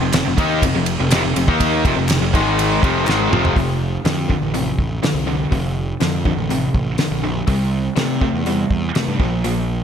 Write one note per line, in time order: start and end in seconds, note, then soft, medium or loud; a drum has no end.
0.02 0.13 F1 medium
0.02 0.14 F2 medium
0.02 0.14 C3 medium
0.13 0.25 F1 medium
0.13 0.26 F2 medium
0.13 0.27 C3 medium
0.13 snare loud
0.13 clap medium
0.13 ride medium
0.26 0.37 F1 medium
0.26 0.39 F2 medium
0.26 0.38 C3 medium
0.38 0.61 D#2 loud
0.38 0.62 D#3 loud
0.38 0.63 A#3 loud
0.38 0.63 D#4 loud
0.38 kick loud
0.38 ride medium
0.62 0.74 F1 medium
0.62 0.75 F2 medium
0.62 0.75 C3 medium
0.62 kick medium
0.62 ride loud
0.74 0.97 F1 medium
0.74 0.95 F2 medium
0.74 0.95 C3 medium
0.86 ride medium
0.99 1.11 F1 medium
0.99 1.11 F2 medium
0.99 1.11 C3 medium
1.11 1.23 F1 medium
1.11 1.23 F2 medium
1.11 1.23 C3 medium
1.11 snare loud
1.11 clap medium
1.11 ride loud
1.24 1.35 F1 medium
1.24 1.34 F2 medium
1.24 1.35 C3 medium
1.36 1.47 F1 medium
1.36 1.48 F2 medium
1.36 1.47 C3 medium
1.36 ride medium
1.48 1.82 D#2 medium
1.48 1.84 D#3 medium
1.48 1.84 A#3 loud
1.48 1.85 D#4 loud
1.48 kick loud
1.60 kick medium
1.60 ride medium
1.84 1.96 F1 medium
1.84 1.94 F2 medium
1.84 1.95 C3 medium
1.84 kick loud
1.84 ride medium
1.96 2.20 F1 medium
1.96 2.16 F2 medium
1.96 2.16 C3 medium
2.08 snare loud
2.08 clap loud
2.08 ride medium
2.21 2.33 F1 medium
2.21 2.33 F2 medium
2.21 2.33 C3 medium
2.34 2.79 G#1 loud
2.34 2.82 G#2 medium
2.34 2.83 D#3 loud
2.34 2.83 G#3 loud
2.34 kick loud
2.34 ride medium
2.59 ride medium
2.83 3.06 F1 medium
2.83 3.07 F2 medium
2.83 3.07 C3 medium
2.83 3.07 F3 loud
2.83 kick loud
2.83 ride medium
3.07 3.30 G#1 medium
3.07 3.31 G#2 medium
3.07 3.31 D#3 medium
3.07 3.31 G#3 medium
3.07 snare medium
3.07 clap loud
3.31 3.54 F1 medium
3.31 3.54 F2 medium
3.31 3.55 C3 medium
3.31 3.56 F3 loud
3.31 mid tom medium
3.45 floor tom medium
3.56 3.96 F1 medium
3.56 4.00 F2 medium
3.56 4.00 C3 medium
3.56 kick medium
3.56 open hi-hat soft
4.04 4.35 F2 medium
4.04 4.27 F2 medium
4.04 4.27 D3 medium
4.04 snare loud
4.04 open hi-hat medium
4.28 4.51 F2 medium
4.28 4.51 D3 medium
4.28 kick medium
4.42 4.72 A1 medium
4.54 4.98 F2 medium
4.54 4.98 C3 medium
4.54 open hi-hat soft
4.79 4.99 A1 medium
4.79 kick medium
5.03 5.25 F2 medium
5.03 5.25 D3 medium
5.03 snare loud
5.03 open hi-hat soft
5.14 5.44 C2 medium
5.26 5.49 F2 medium
5.26 5.49 D3 medium
5.51 5.92 F1 medium
5.51 5.96 F2 medium
5.51 5.96 C3 medium
5.51 kick loud
5.51 open hi-hat soft
6.00 6.23 F2 medium
6.00 6.31 F2 medium
6.00 6.23 D3 medium
6.00 snare medium
6.00 open hi-hat soft
6.25 6.48 F2 medium
6.25 6.48 D3 medium
6.25 kick medium
6.37 6.67 A1 medium
6.50 6.94 F2 medium
6.50 6.94 C3 medium
6.50 open hi-hat soft
6.74 6.94 A1 medium
6.74 kick medium
6.98 7.21 F2 medium
6.98 7.21 D3 medium
6.98 snare loud
6.98 open hi-hat soft
7.11 7.41 A#1 medium
7.23 7.45 F2 medium
7.23 7.46 D3 medium
7.47 7.88 C2 medium
7.47 7.92 C3 medium
7.47 7.92 G3 medium
7.47 kick loud
7.47 open hi-hat soft
7.96 8.19 C3 medium
7.96 8.27 C3 medium
7.96 8.19 A3 medium
7.96 snare loud
7.96 open hi-hat soft
8.21 8.43 C3 medium
8.21 8.44 A3 medium
8.21 kick medium
8.33 8.64 E2 medium
8.46 8.91 C3 medium
8.46 8.91 G3 medium
8.46 open hi-hat soft
8.70 8.91 E2 medium
8.70 kick medium
8.95 9.18 C3 medium
8.95 9.18 A3 medium
8.95 snare loud
8.95 open hi-hat soft
9.08 9.18 G2 medium
9.19 9.80 A#1 medium
9.19 9.42 A#2 medium
9.19 9.42 F3 medium
9.19 kick medium
9.44 9.84 A#2 medium
9.44 9.84 F3 medium
9.44 open hi-hat soft